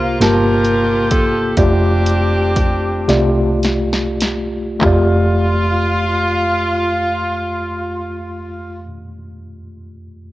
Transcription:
0.00 0.16 C2 medium
0.00 0.16 C3 medium
0.00 0.12 A#3 medium
0.00 0.17 A#3 medium
0.00 0.16 F4 medium
0.00 0.17 F4 medium
0.00 0.13 G4 medium
0.00 0.13 C5 medium
0.20 1.53 G1 medium
0.20 1.49 A#3 medium
0.20 1.49 F4 soft
0.20 1.54 F4 medium
0.20 1.49 G4 soft
0.20 1.54 G4 medium
0.20 1.11 A#4 medium
0.20 1.50 A5 medium
0.20 snare medium
0.20 closed hi-hat medium
0.65 closed hi-hat soft
1.11 1.54 A4 medium
1.11 kick medium
1.11 closed hi-hat medium
1.57 3.04 F1 medium
1.57 2.99 A3 medium
1.57 3.60 C4 soft
1.57 3.60 D4 medium
1.57 2.99 F4 medium
1.57 3.64 G4 medium
1.57 2.99 G4 medium
1.57 3.00 D5 medium
1.57 kick medium
1.57 closed hi-hat medium
2.06 closed hi-hat soft
2.56 kick medium
2.56 closed hi-hat medium
3.08 4.78 C2 medium
3.08 4.71 A3 medium
3.08 4.71 F4 medium
3.08 4.71 G4 medium
3.08 4.72 D5 medium
3.08 snare soft
3.08 closed hi-hat medium
3.63 snare medium
3.63 closed hi-hat soft
3.93 snare medium
4.20 snare medium
4.20 closed hi-hat medium
4.79 8.83 F1 medium
4.79 8.84 F2 medium
4.79 8.80 A3 medium
4.79 8.83 F4 medium
4.79 kick medium
4.79 clap medium
4.79 floor tom medium
4.83 8.84 F4 medium
4.83 8.85 G4 medium
4.83 8.87 D5 medium

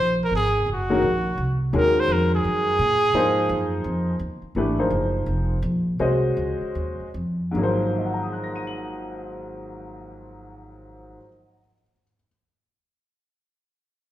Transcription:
0.00 0.31 A#1 medium
0.00 0.17 C5 loud
0.23 0.34 A#4 medium
0.31 0.65 G#1 medium
0.36 0.67 G#4 medium
0.66 1.01 F#1 medium
0.72 1.59 F#4 medium
0.90 1.02 D#3 medium
0.90 1.02 G#3 medium
0.90 1.02 C#4 medium
0.90 1.02 F#4 medium
0.90 1.03 A#4 medium
1.02 1.37 A#1 medium
1.37 1.72 C2 medium
1.73 2.07 D#2 medium
1.73 2.71 D#3 medium
1.73 2.71 G#3 medium
1.73 2.72 C#4 medium
1.73 2.72 F#4 medium
1.73 2.72 A#4 medium
1.77 2.01 A#4 medium
2.00 2.14 C5 medium
2.08 2.43 F2 medium
2.12 2.33 A#4 medium
2.35 4.18 G#4 loud
2.44 2.78 F#2 medium
2.79 3.13 A#2 medium
3.13 3.48 G#2 medium
3.13 4.12 F3 medium
3.13 4.12 A#3 medium
3.13 4.13 D#4 medium
3.13 4.13 G#4 medium
3.13 4.13 C5 medium
3.49 3.84 F#2 medium
3.84 4.19 F2 medium
4.19 4.40 D#2 medium
4.42 muted upright bass stroke soft
4.55 4.90 G#1 medium
4.55 4.76 E3 medium
4.55 4.76 A3 medium
4.55 4.76 D4 medium
4.55 4.76 G4 medium
4.55 4.76 B4 medium
4.79 5.55 F3 medium
4.79 5.55 A#3 soft
4.79 5.55 D#4 soft
4.79 5.55 G#4 soft
4.79 5.55 C5 medium
4.90 5.25 F#1 medium
5.26 5.61 F1 medium
5.62 5.98 A#1 medium
5.99 6.36 C2 medium
5.99 7.06 G#3 medium
5.99 7.06 C#4 medium
5.99 7.06 F#4 medium
5.99 7.06 C5 medium
5.99 7.07 D#5 medium
6.37 6.59 C#2 medium
6.61 muted upright bass stroke soft
6.75 6.98 D#2 medium
7.00 muted upright bass stroke soft
7.14 7.54 F2 medium
7.51 11.14 G#1 medium
7.51 11.15 G#2 medium
7.51 11.17 D#3 medium
7.56 11.19 F#3 medium
7.56 11.22 A#3 medium
7.60 11.24 F3 soft
7.60 11.27 C5 medium
7.98 11.58 D#5 soft
8.06 11.65 F#5 soft
8.14 11.73 A#5 soft
8.23 11.83 D#6 soft
8.33 11.93 F#6 soft
8.44 12.03 A#6 soft
8.56 12.15 D#7 soft
8.67 12.27 F#7 soft

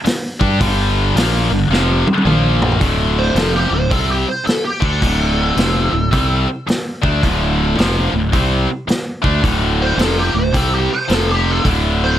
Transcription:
0.05 muted fingered electric bass stroke soft
0.05 muted distorted electric guitar stroke soft
0.05 snare medium
0.05 open hi-hat soft
0.40 0.59 G2 medium
0.40 0.59 G3 medium
0.40 0.60 D4 medium
0.40 0.60 G4 loud
0.40 kick loud
0.60 1.12 G1 medium
0.60 1.15 G2 medium
0.60 1.15 D3 loud
0.60 1.15 G3 loud
0.60 kick loud
0.60 open hi-hat medium
1.15 1.48 A#1 medium
1.15 1.50 A#2 medium
1.15 1.50 F3 medium
1.15 1.50 A#3 loud
1.15 snare loud
1.15 open hi-hat medium
1.50 1.69 G1 medium
1.50 1.67 G2 medium
1.50 1.67 D3 medium
1.70 2.03 F1 medium
1.70 2.05 F2 medium
1.70 2.05 C3 medium
1.70 2.05 F3 loud
1.70 snare medium
2.07 high tom medium
2.18 high tom medium
2.25 2.77 A#1 medium
2.25 2.80 A#2 medium
2.25 2.80 F3 medium
2.25 2.81 A#3 medium
2.25 mid tom medium
2.62 floor tom medium
2.72 floor tom medium
2.80 3.33 D1 medium
2.80 3.35 D2 medium
2.80 3.36 A2 loud
2.80 3.36 D3 loud
2.80 kick medium
2.80 open hi-hat soft
3.19 3.36 C5 medium
3.35 3.68 F1 medium
3.35 3.70 F2 medium
3.35 3.71 C3 medium
3.35 3.71 F3 loud
3.35 3.55 A4 medium
3.35 snare loud
3.35 open hi-hat soft
3.56 3.73 G4 medium
3.71 3.90 D1 medium
3.71 3.87 D2 medium
3.71 3.88 A2 medium
3.71 3.91 C5 medium
3.90 4.24 C2 medium
3.90 4.25 C3 medium
3.90 4.26 G3 medium
3.90 4.26 C4 medium
3.90 4.09 A4 medium
3.90 kick loud
3.90 open hi-hat soft
4.11 4.28 G4 medium
4.29 4.46 C5 medium
4.46 4.64 A4 medium
4.46 muted distorted electric guitar stroke soft
4.46 muted fingered electric bass stroke soft
4.46 snare medium
4.46 open hi-hat soft
4.65 4.84 G4 medium
4.81 5.00 D2 medium
4.81 5.01 D3 medium
4.81 5.01 A3 medium
4.81 5.01 D4 medium
4.81 6.46 A4 medium
4.81 kick medium
5.00 5.53 D1 medium
5.00 5.56 D2 medium
5.00 5.56 A2 medium
5.00 5.56 D3 medium
5.00 kick medium
5.00 open hi-hat soft
5.56 5.90 F1 medium
5.56 5.91 F2 medium
5.56 5.92 C3 medium
5.56 5.92 F3 medium
5.56 snare loud
5.56 open hi-hat soft
5.92 6.11 D1 medium
5.92 6.08 D2 medium
5.92 6.08 A2 medium
6.11 6.46 C2 medium
6.11 6.46 C3 medium
6.11 6.47 G3 medium
6.11 6.47 C4 medium
6.11 kick loud
6.11 open hi-hat soft
6.67 muted distorted electric guitar stroke medium
6.67 muted fingered electric bass stroke soft
6.67 snare medium
6.67 open hi-hat soft
7.02 7.22 D2 medium
7.02 7.22 D3 medium
7.02 7.22 A3 medium
7.02 7.22 D4 medium
7.02 kick medium
7.22 7.74 D1 medium
7.22 7.77 D2 medium
7.22 7.78 A2 medium
7.22 7.78 D3 loud
7.22 kick medium
7.22 open hi-hat soft
7.78 8.11 F1 medium
7.78 8.12 F2 medium
7.78 8.12 C3 medium
7.78 8.13 F3 loud
7.78 snare loud
7.78 open hi-hat soft
8.13 8.32 D1 medium
8.13 8.29 D2 medium
8.13 8.29 A2 medium
8.32 8.66 C2 loud
8.32 8.67 C3 medium
8.32 8.67 G3 medium
8.32 8.68 C4 medium
8.32 kick loud
8.32 open hi-hat soft
8.88 muted distorted electric guitar stroke soft
8.88 muted fingered electric bass stroke soft
8.88 snare medium
8.88 open hi-hat soft
9.22 9.43 D2 medium
9.22 9.42 D3 medium
9.22 9.42 A3 medium
9.22 9.43 D4 medium
9.22 kick medium
9.42 9.95 D1 medium
9.42 9.97 D2 medium
9.42 9.98 A2 medium
9.42 9.98 D3 loud
9.42 kick medium
9.42 open hi-hat soft
9.82 9.99 C5 medium
9.97 10.31 F1 medium
9.97 10.33 F2 medium
9.97 10.33 C3 medium
9.97 10.33 F3 loud
9.97 10.18 A4 medium
9.97 snare medium
9.97 open hi-hat soft
10.19 10.36 G4 medium
10.34 10.53 D1 medium
10.34 10.50 D2 medium
10.34 10.50 A2 medium
10.38 10.55 C5 medium
10.53 10.87 C2 medium
10.53 10.88 C3 medium
10.53 10.89 G3 medium
10.53 10.89 C4 medium
10.53 10.73 A4 medium
10.53 kick loud
10.53 open hi-hat medium
10.75 10.92 G4 medium
10.93 11.10 C5 medium
11.08 11.61 F1 medium
11.08 11.63 F2 medium
11.08 11.64 C3 medium
11.08 11.64 F3 medium
11.08 snare medium
11.08 open hi-hat soft
11.13 11.31 A4 medium
11.31 11.51 G4 medium
11.51 11.67 A4 medium
11.64 12.17 D1 medium
11.64 12.19 D2 medium
11.64 12.19 A2 medium
11.64 12.19 D3 medium
11.64 kick medium
11.64 open hi-hat soft
12.04 12.19 C5 medium

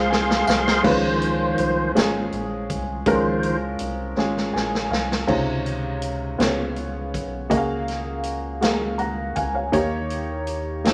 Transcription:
0.00 0.44 C2 medium
0.00 0.86 C#3 medium
0.00 0.83 G#3 medium
0.00 0.86 C4 medium
0.00 0.84 F4 medium
0.00 0.82 G#4 medium
0.00 0.82 C5 medium
0.00 0.86 C5 medium
0.00 0.46 F5 medium
0.00 0.82 F5 medium
0.00 0.82 C6 medium
0.10 0.45 G#5 medium
0.10 snare medium
0.31 snare medium
0.47 0.82 C2 medium
0.47 0.82 F5 medium
0.47 snare medium
0.47 tambourine medium
0.68 snare loud
0.83 1.54 C#2 medium
0.83 1.91 D#3 soft
0.83 1.91 F3 soft
0.83 1.91 F3 medium
0.83 1.85 G#3 medium
0.83 1.85 C#4 medium
0.83 1.85 F4 medium
0.83 0.91 B4 medium
0.83 1.92 C5 medium
0.83 kick loud
0.83 crash medium
0.91 1.89 C5 medium
1.22 closed hi-hat soft
1.58 1.93 C2 medium
1.58 closed hi-hat medium
1.95 2.29 G#1 medium
1.95 2.96 G#3 medium
1.95 2.96 C#4 medium
1.95 2.97 F4 medium
1.95 2.97 G#4 medium
1.95 snare loud
1.95 closed hi-hat medium
2.32 2.71 A#1 medium
2.32 closed hi-hat soft
2.70 3.03 C2 medium
2.70 kick medium
2.70 closed hi-hat medium
3.06 3.76 C#2 loud
3.06 3.56 D#3 medium
3.06 4.14 F3 medium
3.06 3.56 F3 soft
3.06 4.07 G#3 medium
3.06 4.08 C#4 medium
3.06 4.08 F4 medium
3.06 4.08 A#4 medium
3.06 3.57 C5 medium
3.06 kick medium
3.06 closed hi-hat medium
3.43 closed hi-hat soft
3.79 4.14 C2 medium
3.79 closed hi-hat medium
4.17 4.51 G#1 medium
4.17 5.18 G#3 medium
4.17 5.18 C#4 medium
4.17 5.19 F4 medium
4.17 5.19 G#4 medium
4.17 snare soft
4.37 snare soft
4.53 4.88 A#1 medium
4.53 4.88 G#5 medium
4.53 snare medium
4.75 snare medium
4.91 5.25 C2 medium
4.91 5.25 F5 medium
4.91 snare medium
5.12 snare medium
5.27 6.35 C#2 loud
5.27 6.29 C3 medium
5.27 6.35 C#3 medium
5.27 6.29 D#4 medium
5.27 6.29 F4 medium
5.27 6.30 C#5 medium
5.27 kick medium
5.27 crash medium
5.66 closed hi-hat soft
6.02 closed hi-hat medium
6.38 7.15 C#2 medium
6.38 7.47 C#3 medium
6.38 7.40 B3 medium
6.38 7.40 F4 medium
6.38 7.41 G#4 medium
6.38 6.46 C5 medium
6.38 snare medium
6.38 closed hi-hat medium
6.46 7.44 C#5 medium
6.76 closed hi-hat soft
7.14 7.52 B1 medium
7.14 kick medium
7.14 closed hi-hat medium
7.50 9.32 C#2 loud
7.50 8.58 C#3 medium
7.50 8.52 A#3 medium
7.50 8.52 F#4 medium
7.50 8.52 G#4 medium
7.50 7.57 D#5 medium
7.50 kick medium
7.50 closed hi-hat medium
7.57 8.55 F5 medium
7.88 snare soft
7.88 closed hi-hat soft
8.23 closed hi-hat medium
8.61 8.68 G#3 soft
8.61 9.63 F#4 medium
8.61 9.63 G#4 medium
8.61 8.99 F5 medium
8.61 snare medium
8.61 closed hi-hat medium
8.67 9.66 A#3 medium
8.98 9.34 F#5 soft
8.98 9.34 A#5 medium
8.98 closed hi-hat soft
9.36 9.70 C#2 medium
9.36 9.53 F5 medium
9.36 9.54 G#5 medium
9.36 kick medium
9.36 closed hi-hat medium
9.55 9.72 C#5 soft
9.55 9.90 F5 medium
9.72 10.94 D#2 loud
9.72 10.81 D#3 medium
9.72 10.74 A#3 medium
9.72 10.74 D#4 medium
9.72 10.75 G4 medium
9.72 10.75 C#5 medium
9.72 kick medium
9.72 closed hi-hat medium
10.10 closed hi-hat soft
10.47 closed hi-hat medium
10.85 10.94 A#3 medium
10.85 10.94 D#4 medium
10.85 10.91 F4 soft
10.85 10.94 C5 medium
10.85 snare medium
10.85 closed hi-hat medium

